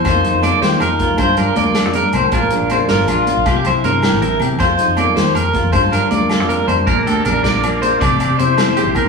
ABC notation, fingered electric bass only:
X:1
M:12/8
L:1/16
Q:3/8=106
K:Bb
V:1 name="Fingered electric bass" clef=bass
F,,2 z F,,2 z E,,2 F,,3 D,, G,,2 G,, z D,,3 F,,3 C,,2 | B,,,2 z B,,,2 z G,,,2 B,,,3 B,,, C,,2 C,, z G,,3 A,,,3 C,2 | F,,2 z F,,2 z E,,2 F,,3 F,, G,,2 G,, z D,,3 F,,3 F,,2 | B,,,2 D,,2 B,,,2 B,,,6 C,, A,,, z C, C,4- C, C,, z G,, |]